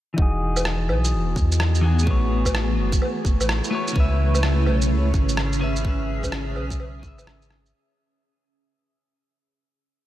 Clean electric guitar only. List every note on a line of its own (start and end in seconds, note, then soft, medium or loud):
0.14 1.79 E3 medium
0.14 1.81 D#4 medium
0.19 1.82 F#4 medium
0.19 1.83 G#4 loud
1.81 2.04 E3 medium
1.81 2.05 D#4 medium
1.81 2.04 F#4 medium
1.85 2.06 G#4 medium
2.03 3.68 A3 medium
2.03 3.70 F#4 medium
2.08 3.71 B4 medium
2.08 3.72 C#5 loud
3.71 3.93 A3 medium
3.71 3.94 F#4 medium
3.71 3.94 B4 medium
3.71 3.95 C#5 medium
3.92 5.57 C#3 medium
3.92 5.59 C#4 medium
3.97 5.60 B4 medium
3.97 5.61 E5 loud
5.59 5.80 C#3 medium
5.59 5.83 C#4 medium
5.59 5.83 B4 medium
5.64 5.84 E5 medium
5.81 6.98 C#3 medium
5.81 7.01 C#4 medium
5.87 7.02 B4 medium
5.87 7.04 E5 loud
6.99 7.70 C#3 medium
6.99 7.72 C#4 medium
7.05 7.73 B4 medium
7.05 7.74 E5 medium